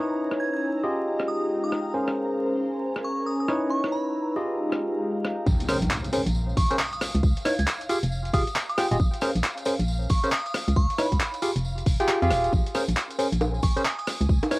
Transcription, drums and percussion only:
0.31 cross-stick soft
1.19 cross-stick soft
1.72 cross-stick soft
2.08 cross-stick soft
2.96 cross-stick soft
3.48 cross-stick medium
3.84 cross-stick soft
4.72 cross-stick medium
5.25 cross-stick medium
5.47 kick loud
5.47 tambourine medium
5.60 closed hi-hat soft
5.60 tambourine soft
5.69 cross-stick medium
5.69 open hi-hat loud
5.69 tambourine loud
5.82 closed hi-hat medium
5.90 clap loud
5.90 tambourine medium
6.05 closed hi-hat soft
6.05 tambourine soft
6.13 open hi-hat loud
6.13 tambourine loud
6.27 closed hi-hat medium
6.27 tambourine soft
6.35 tambourine medium
6.49 tambourine soft
6.57 kick loud
6.57 open hi-hat loud
6.57 tambourine medium
6.71 closed hi-hat medium
6.71 tambourine soft
6.79 clap loud
6.79 tambourine soft
6.93 closed hi-hat soft
6.93 tambourine soft
7.01 cross-stick medium
7.01 open hi-hat loud
7.01 tambourine medium
7.14 closed hi-hat medium
7.14 tambourine soft
7.23 kick loud
7.23 tambourine medium
7.36 closed hi-hat medium
7.36 tambourine soft
7.45 cross-stick medium
7.45 open hi-hat loud
7.45 tambourine loud
7.59 closed hi-hat medium
7.59 tambourine soft
7.67 clap loud
7.67 tambourine medium
7.81 closed hi-hat medium
7.81 tambourine soft
7.89 open hi-hat loud
7.89 tambourine loud
8.03 closed hi-hat medium
8.03 tambourine soft
8.12 tambourine medium
8.25 closed hi-hat soft
8.25 tambourine soft
8.33 kick loud
8.33 open hi-hat loud
8.33 tambourine loud
8.47 closed hi-hat medium
8.47 tambourine soft
8.56 clap loud
8.56 tambourine medium
8.69 closed hi-hat soft
8.69 tambourine soft
8.78 cross-stick medium
8.78 open hi-hat loud
8.78 tambourine loud
8.91 closed hi-hat medium
8.91 tambourine soft
9.00 kick loud
9.00 tambourine medium
9.13 closed hi-hat medium
9.13 tambourine soft
9.21 cross-stick medium
9.21 open hi-hat loud
9.21 tambourine medium
9.35 closed hi-hat medium
9.35 tambourine soft
9.44 clap loud
9.44 tambourine soft
9.57 closed hi-hat soft
9.57 tambourine soft
9.65 open hi-hat loud
9.65 tambourine loud
9.79 closed hi-hat medium
9.79 tambourine soft
9.88 tambourine medium
10.02 tambourine soft
10.09 kick loud
10.09 open hi-hat loud
10.09 tambourine loud
10.24 closed hi-hat medium
10.24 tambourine soft
10.31 clap loud
10.31 tambourine medium
10.46 closed hi-hat soft
10.46 tambourine soft
10.54 cross-stick medium
10.54 open hi-hat loud
10.54 tambourine loud
10.68 closed hi-hat medium
10.68 tambourine soft
10.76 kick loud
10.76 tambourine medium
10.90 closed hi-hat soft
10.90 tambourine soft
10.98 cross-stick medium
10.98 open hi-hat loud
10.98 tambourine medium
11.12 kick medium
11.12 closed hi-hat medium
11.12 tambourine soft
11.20 clap loud
11.20 tambourine medium
11.34 closed hi-hat soft
11.34 tambourine soft
11.42 open hi-hat loud
11.42 tambourine loud
11.56 closed hi-hat medium
11.56 tambourine soft
11.65 tambourine medium
11.78 closed hi-hat soft
11.78 tambourine soft
11.86 kick loud
11.86 open hi-hat loud
11.86 tambourine medium
12.00 closed hi-hat medium
12.00 tambourine soft
12.08 clap loud
12.08 tambourine soft
12.22 closed hi-hat soft
12.22 tambourine soft
12.30 cross-stick medium
12.30 open hi-hat loud
12.30 tambourine medium
12.44 closed hi-hat medium
12.44 tambourine soft
12.53 kick loud
12.53 tambourine medium
12.66 closed hi-hat medium
12.66 tambourine soft
12.74 cross-stick soft
12.74 open hi-hat loud
12.74 tambourine medium
12.88 closed hi-hat medium
12.88 tambourine soft
12.97 clap loud
12.97 tambourine medium
13.10 closed hi-hat medium
13.10 tambourine soft
13.19 open hi-hat loud
13.19 tambourine medium
13.32 closed hi-hat medium
13.32 tambourine soft
13.41 tambourine soft
13.41 high bongo medium
13.54 tambourine soft
13.63 kick loud
13.63 open hi-hat loud
13.63 tambourine loud
13.77 closed hi-hat medium
13.77 tambourine soft
13.85 clap loud
13.85 tambourine medium
13.99 closed hi-hat soft
13.99 tambourine soft
14.07 cross-stick medium
14.07 open hi-hat loud
14.07 tambourine loud
14.21 closed hi-hat medium
14.21 tambourine soft
14.29 kick loud
14.29 tambourine medium
14.43 closed hi-hat medium
14.43 tambourine soft
14.43 high bongo medium
14.51 cross-stick soft
14.51 open hi-hat loud
14.51 tambourine medium

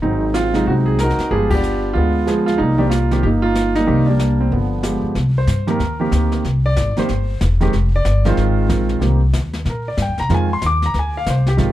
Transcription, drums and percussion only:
0.02 brush sweep soft
0.34 snare medium
0.34 hi-hat pedal medium
0.54 snare soft
0.67 brush sweep soft
0.99 snare medium
0.99 hi-hat pedal medium
1.10 snare soft
1.19 snare soft
1.20 snare soft
1.31 brush sweep soft
1.50 kick medium
1.50 crash medium
1.63 hi-hat pedal medium
1.95 brush sweep soft
2.27 snare medium
2.27 hi-hat pedal medium
2.48 snare soft
2.60 brush sweep soft
2.91 snare medium
2.91 hi-hat pedal medium
3.11 snare soft
3.24 brush sweep soft
3.55 snare medium
3.55 hi-hat pedal medium
3.75 snare soft
3.88 brush sweep soft
4.19 snare medium
4.19 hi-hat pedal medium
4.51 brush sweep soft
4.83 snare medium
4.83 hi-hat pedal medium
5.15 brush sweep soft
5.15 snare soft
5.47 snare medium
5.47 hi-hat pedal medium
5.68 snare soft
5.80 brush sweep soft
5.80 snare soft
6.12 snare medium
6.12 hi-hat pedal medium
6.32 snare soft
6.44 brush sweep soft
6.44 snare soft
6.76 snare medium
6.76 hi-hat pedal soft
6.97 snare soft
7.09 brush sweep soft
7.09 snare soft
7.41 snare medium
7.41 hi-hat pedal medium
7.61 snare soft
7.73 brush sweep soft
7.73 snare soft
8.05 snare medium
8.05 hi-hat pedal medium
8.25 snare soft
8.37 brush sweep soft
8.37 snare soft
8.70 snare medium
8.70 hi-hat pedal medium
8.89 snare soft
9.02 brush sweep soft
9.02 snare soft
9.33 snare medium
9.33 hi-hat pedal medium
9.53 snare soft
9.66 brush sweep soft
9.66 snare soft
9.97 snare medium
9.97 hi-hat pedal medium
10.18 snare soft
10.30 brush sweep soft
10.30 snare soft
10.62 snare medium
10.62 hi-hat pedal medium
10.82 snare soft
10.94 brush sweep soft
10.94 snare soft
11.26 snare medium
11.26 hi-hat pedal medium
11.46 snare soft
11.58 brush sweep medium
11.58 snare soft

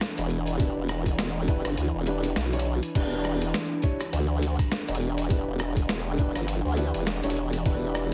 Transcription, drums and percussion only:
0.00 snare loud
0.00 closed hi-hat medium
0.00 maracas soft
0.18 closed hi-hat soft
0.30 maracas medium
0.46 closed hi-hat soft
0.46 maracas medium
0.59 kick loud
0.59 closed hi-hat medium
0.59 maracas soft
0.88 cross-stick medium
0.88 maracas medium
1.06 kick medium
1.06 closed hi-hat medium
1.06 maracas medium
1.18 snare loud
1.18 closed hi-hat medium
1.18 maracas soft
1.48 kick loud
1.48 closed hi-hat soft
1.48 maracas medium
1.65 cross-stick soft
1.65 closed hi-hat medium
1.65 maracas medium
1.77 closed hi-hat medium
1.77 maracas soft
2.06 closed hi-hat soft
2.06 maracas medium
2.23 closed hi-hat medium
2.23 maracas medium
2.36 snare loud
2.36 closed hi-hat medium
2.36 maracas soft
2.53 closed hi-hat soft
2.60 closed hi-hat medium
2.65 maracas medium
2.82 closed hi-hat medium
2.82 maracas soft
2.95 kick loud
2.95 closed hi-hat medium
2.95 crash medium
2.95 maracas soft
3.24 cross-stick medium
3.24 maracas medium
3.41 closed hi-hat medium
3.41 maracas medium
3.53 snare loud
3.53 closed hi-hat medium
3.53 maracas soft
3.82 kick loud
3.82 closed hi-hat soft
3.82 maracas loud
3.99 cross-stick soft
3.99 closed hi-hat medium
3.99 maracas medium
4.13 closed hi-hat medium
4.13 maracas soft
4.42 closed hi-hat soft
4.42 maracas loud
4.59 kick loud
4.59 cross-stick soft
4.59 closed hi-hat medium
4.59 maracas medium
4.71 snare loud
4.71 closed hi-hat medium
4.71 maracas soft
4.88 closed hi-hat medium
4.95 closed hi-hat medium
5.00 maracas loud
5.18 closed hi-hat medium
5.18 maracas medium
5.30 kick loud
5.30 closed hi-hat medium
5.30 maracas soft
5.59 cross-stick medium
5.59 maracas loud
5.76 kick medium
5.76 closed hi-hat medium
5.76 maracas medium
5.89 snare loud
5.89 closed hi-hat medium
5.89 maracas soft
6.18 kick loud
6.18 closed hi-hat soft
6.18 maracas loud
6.35 cross-stick soft
6.35 closed hi-hat medium
6.35 maracas medium
6.48 closed hi-hat medium
6.48 maracas soft
6.77 closed hi-hat soft
6.77 maracas loud
6.94 closed hi-hat medium
6.94 maracas medium
7.07 snare loud
7.07 closed hi-hat medium
7.07 maracas soft
7.24 closed hi-hat medium
7.30 closed hi-hat medium
7.36 maracas loud
7.52 closed hi-hat medium
7.52 maracas medium
7.65 kick loud
7.65 closed hi-hat medium
7.65 maracas soft
7.95 cross-stick medium
7.95 maracas loud

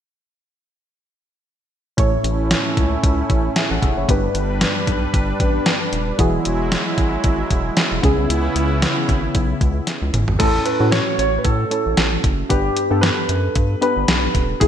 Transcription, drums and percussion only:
1.98 kick medium
1.98 closed hi-hat medium
2.24 closed hi-hat medium
2.51 snare loud
2.51 closed hi-hat medium
2.77 kick medium
2.77 closed hi-hat medium
3.04 kick medium
3.04 closed hi-hat medium
3.30 kick medium
3.30 closed hi-hat medium
3.56 snare loud
3.56 closed hi-hat medium
3.82 kick medium
3.82 closed hi-hat medium
4.09 kick medium
4.09 closed hi-hat medium
4.35 closed hi-hat medium
4.61 snare loud
4.61 closed hi-hat medium
4.87 kick medium
4.87 closed hi-hat medium
5.14 kick medium
5.14 closed hi-hat medium
5.40 kick medium
5.40 closed hi-hat medium
5.66 snare loud
5.66 closed hi-hat medium
5.93 closed hi-hat medium
6.19 kick loud
6.19 closed hi-hat medium
6.45 closed hi-hat medium
6.72 snare loud
6.72 closed hi-hat medium
6.98 kick medium
6.98 closed hi-hat medium
7.24 kick medium
7.24 closed hi-hat medium
7.51 kick medium
7.51 closed hi-hat medium
7.77 snare loud
7.77 closed hi-hat medium
8.03 kick loud
8.03 closed hi-hat medium
8.30 closed hi-hat medium
8.56 closed hi-hat medium
8.82 snare loud
8.82 closed hi-hat medium
9.09 kick medium
9.09 closed hi-hat medium
9.35 kick medium
9.35 closed hi-hat medium
9.61 kick medium
9.61 closed hi-hat medium
9.87 snare soft
9.87 closed hi-hat medium
10.14 closed hi-hat medium
10.14 mid tom medium
10.28 floor tom medium
10.40 kick loud
10.40 closed hi-hat medium
10.40 crash medium
10.66 closed hi-hat medium
10.92 snare loud
10.92 closed hi-hat medium
11.19 closed hi-hat medium
11.45 kick medium
11.45 closed hi-hat medium
11.71 closed hi-hat medium
11.97 snare loud
11.97 closed hi-hat medium
12.24 kick medium
12.24 closed hi-hat medium
12.50 kick loud
12.50 closed hi-hat medium
12.77 closed hi-hat medium
13.03 snare loud
13.03 closed hi-hat medium
13.29 closed hi-hat medium
13.55 kick medium
13.55 closed hi-hat medium
13.82 closed hi-hat medium
14.08 snare loud
14.08 closed hi-hat medium
14.35 kick medium
14.35 closed hi-hat medium
14.61 kick loud
14.61 closed hi-hat medium

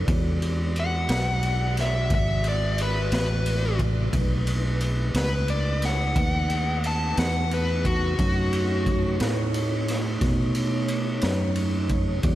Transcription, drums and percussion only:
0.08 kick loud
0.08 ride medium
0.42 ride medium
0.76 ride soft
1.09 snare medium
1.09 ride medium
1.43 ride medium
1.77 snare soft
1.77 ride medium
2.10 kick loud
2.10 ride medium
2.44 ride medium
2.78 ride medium
3.12 snare medium
3.12 ride medium
3.46 ride medium
3.79 kick medium
3.79 ride medium
4.13 kick loud
4.13 ride medium
4.47 ride medium
4.80 ride medium
5.14 snare loud
5.14 ride medium
5.48 ride medium
5.82 snare soft
5.82 ride medium
6.16 kick medium
6.16 ride medium
6.50 ride medium
6.84 ride medium
7.17 snare loud
7.17 ride medium
7.51 ride medium
7.85 kick medium
7.85 ride medium
8.19 kick loud
8.19 ride medium
8.53 ride medium
8.86 kick medium
8.86 ride medium
9.20 snare loud
9.20 ride medium
9.54 ride medium
9.88 snare soft
9.88 ride medium
10.21 kick loud
10.21 snare soft
10.21 ride medium
10.55 ride medium
10.88 ride medium
11.21 snare loud
11.21 ride medium
11.55 ride medium
11.89 kick medium
11.89 ride medium
12.23 kick loud
12.23 ride medium

